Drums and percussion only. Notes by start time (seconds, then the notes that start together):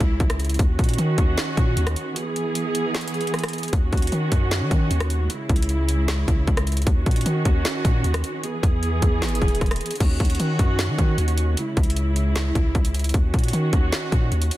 0.00 kick, closed hi-hat
0.20 kick, closed hi-hat
0.30 cross-stick, closed hi-hat
0.39 closed hi-hat, open hi-hat
0.45 closed hi-hat
0.49 closed hi-hat
0.54 closed hi-hat
0.59 kick, closed hi-hat
0.79 kick, closed hi-hat
0.84 closed hi-hat
0.89 closed hi-hat
0.94 closed hi-hat
0.98 closed hi-hat
1.18 kick, closed hi-hat
1.38 snare, closed hi-hat
1.57 kick, closed hi-hat
1.77 closed hi-hat
1.87 cross-stick, closed hi-hat
1.96 closed hi-hat
2.16 closed hi-hat
2.36 closed hi-hat
2.55 closed hi-hat
2.75 closed hi-hat
2.95 snare, closed hi-hat
3.01 closed hi-hat
3.08 closed hi-hat
3.14 closed hi-hat
3.21 closed hi-hat
3.27 closed hi-hat
3.34 cross-stick, closed hi-hat
3.39 closed hi-hat
3.44 cross-stick, closed hi-hat
3.48 closed hi-hat
3.53 closed hi-hat, open hi-hat
3.58 closed hi-hat
3.63 closed hi-hat
3.68 closed hi-hat
3.73 kick, closed hi-hat
3.93 kick, closed hi-hat
3.97 closed hi-hat
4.02 closed hi-hat
4.07 closed hi-hat
4.12 closed hi-hat
4.32 kick, closed hi-hat
4.51 snare, closed hi-hat
4.71 kick, closed hi-hat
4.91 closed hi-hat
5.00 cross-stick, closed hi-hat
5.10 closed hi-hat
5.30 closed hi-hat
5.49 kick, closed hi-hat
5.56 closed hi-hat
5.62 closed hi-hat
5.69 closed hi-hat
5.89 closed hi-hat
6.08 snare, closed hi-hat
6.28 kick, closed hi-hat
6.47 kick, closed hi-hat
6.57 cross-stick, closed hi-hat
6.67 closed hi-hat, open hi-hat
6.72 closed hi-hat
6.77 closed hi-hat
6.82 closed hi-hat
6.87 kick, closed hi-hat
7.06 kick, closed hi-hat
7.11 closed hi-hat
7.16 closed hi-hat
7.21 closed hi-hat
7.26 closed hi-hat
7.45 kick, closed hi-hat
7.65 snare, closed hi-hat
7.85 kick, closed hi-hat
8.04 closed hi-hat
8.14 cross-stick, closed hi-hat
8.24 closed hi-hat
8.44 closed hi-hat
8.63 kick, closed hi-hat
8.83 closed hi-hat
9.02 kick, closed hi-hat
9.22 snare, closed hi-hat
9.29 closed hi-hat
9.35 closed hi-hat
9.42 kick, closed hi-hat
9.48 closed hi-hat
9.55 closed hi-hat
9.61 kick, cross-stick, closed hi-hat
9.66 closed hi-hat
9.71 cross-stick, closed hi-hat
9.76 closed hi-hat
9.81 closed hi-hat, open hi-hat
9.86 closed hi-hat
9.91 closed hi-hat
9.96 closed hi-hat
10.00 kick, closed hi-hat, crash
10.20 kick, closed hi-hat
10.25 closed hi-hat
10.30 closed hi-hat
10.35 closed hi-hat
10.40 closed hi-hat
10.59 kick, closed hi-hat
10.79 snare, closed hi-hat
10.98 kick, closed hi-hat
11.18 closed hi-hat
11.28 closed hi-hat
11.38 closed hi-hat
11.57 closed hi-hat
11.77 kick, closed hi-hat
11.83 closed hi-hat
11.90 closed hi-hat
11.96 closed hi-hat
12.16 closed hi-hat
12.36 snare, closed hi-hat
12.55 kick, closed hi-hat
12.75 kick, closed hi-hat
12.85 closed hi-hat
12.94 closed hi-hat, open hi-hat
12.99 closed hi-hat
13.04 closed hi-hat
13.09 closed hi-hat
13.14 kick, closed hi-hat
13.34 kick, closed hi-hat
13.39 closed hi-hat
13.44 closed hi-hat
13.48 closed hi-hat
13.53 closed hi-hat
13.73 kick, closed hi-hat
13.92 snare, closed hi-hat
14.12 kick, closed hi-hat
14.32 closed hi-hat
14.42 closed hi-hat
14.51 closed hi-hat